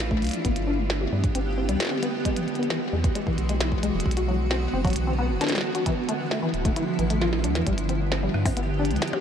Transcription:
Already playing: A1 D4 E4 F4
0.11 A3, kick
0.22 C2, closed hi-hat
0.24 closed hi-hat
0.27 closed hi-hat
0.29 closed hi-hat
0.31 closed hi-hat
0.34 E3, closed hi-hat
0.45 G1 D3 B3 G4, kick, closed hi-hat
0.56 closed hi-hat
0.67 D4
0.79 G3
0.90 snare
1.01 G4
1.12 G2 G3
1.24 kick, closed hi-hat
1.35 G1 C4, closed hi-hat
1.58 C4
1.69 D2 G3, closed hi-hat
1.80 snare, closed hi-hat
1.82 snare
1.85 snare
1.87 snare
1.89 C4, snare
2.03 B3, closed hi-hat
2.25 E3 G#3 F#4, kick, closed hi-hat
2.36 E3, closed hi-hat
2.48 closed hi-hat
2.55 B3, closed hi-hat
2.63 closed hi-hat
2.70 E3, snare
2.93 E2 G#3
3.04 kick, closed hi-hat
3.15 G#3, closed hi-hat
3.27 E3, kick
3.38 B1, closed hi-hat
3.49 G#3, closed hi-hat
3.61 E4, snare, closed hi-hat
3.72 kick
3.83 B1 G#3, closed hi-hat
3.94 E1 E3
4.00 closed hi-hat
4.06 B1 D3 B3, kick
4.11 closed hi-hat
4.17 F#4, closed hi-hat
4.28 F#3
4.51 C4, snare
4.73 F#1 C4
4.85 F#3, kick, closed hi-hat
4.87 closed hi-hat
4.90 closed hi-hat
4.93 closed hi-hat
4.96 B1, closed hi-hat
5.07 C4
5.18 B3
5.30 F#1
5.41 D4, snare, closed hi-hat
5.44 snare
5.47 snare, closed hi-hat
5.49 F#3, snare
5.52 snare
5.55 snare, closed hi-hat
5.58 snare
5.61 snare
5.75 F#4, closed hi-hat
5.86 E3 F3 E4, kick, closed hi-hat
6.09 A3, closed hi-hat
6.31 A3, snare
6.43 E3
6.54 D1, closed hi-hat
6.65 A3, kick, closed hi-hat
6.76 E4, closed hi-hat
6.99 A1 E3, closed hi-hat
7.10 A3, closed hi-hat
7.21 F4, snare
7.33 E4, snare
7.44 D2 D4, closed hi-hat
7.55 F2 E3, snare, closed hi-hat
7.67 G1 D3 G3 B3 G4, kick, closed hi-hat
7.78 closed hi-hat
7.89 C4, closed hi-hat
8.12 C4, snare
8.23 G3
8.34 G2, cross-stick
8.46 C4, kick, open hi-hat, percussion blips
8.57 G1 B3, closed hi-hat
8.79 D4
8.85 closed hi-hat
8.91 D2 G3, closed hi-hat
8.96 closed hi-hat
9.02 snare, closed hi-hat, percussion blips
9.08 closed hi-hat
9.13 G4, percussion blips

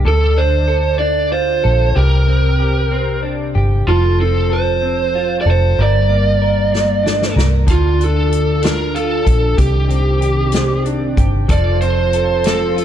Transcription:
Already playing: A#3 D4
0.05 D2 D3 A4
0.37 D4 C5
0.68 A4
0.99 D4 D5
1.32 F4 C5
1.64 A#1 A4
1.95 C2 C3 G4 A#4
2.28 C4
2.60 G4
2.91 C4
3.23 D4
3.55 G1 G4
3.87 F1 F3 F4 A4
4.18 C4 A4
4.50 A4 C5
4.82 C4
5.15 F4
5.41 D5
5.46 F1 A4
5.51 C5
5.78 G1 G2 A#4 D5
6.09 A#3
6.42 A#4
6.72 A#3, snare
7.04 D4, snare
7.22 snare
7.36 C2 A#4, snare
7.67 D2 D3 D4 F4 A4 A5, kick, closed hi-hat
7.71 F4
7.99 D4, closed hi-hat
8.04 A4
8.32 closed hi-hat
8.62 D4 A#4, snare, closed hi-hat
8.95 F4 A4, closed hi-hat
9.25 A#1 A4, kick, closed hi-hat
9.57 C2 C3 D#3 C4 G4, kick, closed hi-hat
9.89 C4, closed hi-hat
10.21 G4, closed hi-hat
10.52 C4, snare, closed hi-hat
10.85 D4, closed hi-hat
11.17 G1 G4, kick, closed hi-hat
11.48 F1 F3 F4 A4 C5 D5, kick, closed hi-hat
11.81 C4 C5, closed hi-hat
12.13 A4, closed hi-hat
12.44 C4 A4, snare, closed hi-hat
12.76 F4, closed hi-hat

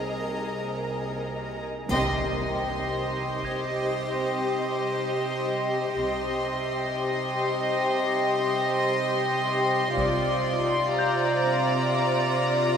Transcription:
Already playing: C2 C3 G#4 A#4 D#5 G#5 A#5
1.89 C2 C3 G4 C5 D#5 C6, taiko, impact, triangle
3.43 G#6, taiko
5.95 C2 C3 G4 C5 D#5 C6
9.97 C2 C3 F4 C5 D5 A#5, taiko
10.97 A#5 G6
11.99 A#6

